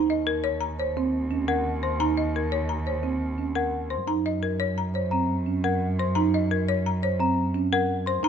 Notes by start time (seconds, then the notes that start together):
Already playing: D#2 D#4 A#5
0.10 D#5
0.27 A#4
0.44 C#5
0.61 A#5
0.79 C5 C#5
0.97 C4
1.31 C#4
1.48 A#4 F#5
1.83 C5 C6
2.00 D#4 A#5
2.17 D#5
2.36 A#4
2.52 C#5
2.69 A#5
2.86 C5 C#5
3.03 C4
3.38 C#4
3.55 A#4 F#5
3.90 C5 C6
4.07 F#2 D#4 A#5
4.26 D#5
4.43 A#4
4.60 C#5
4.78 A#5
4.94 C5 C#5
5.11 C4 A#5
5.46 C#4
5.64 A#4 F#5
5.99 C5 C6
6.15 D#4 A#5
6.34 D#5
6.51 A#4
6.69 C#5
6.86 A#5
7.03 C5 C#5
7.20 C4 A#5
7.54 C#4
7.73 A#4 F#5
8.06 C5 C6
8.23 D#2 D#4 A#5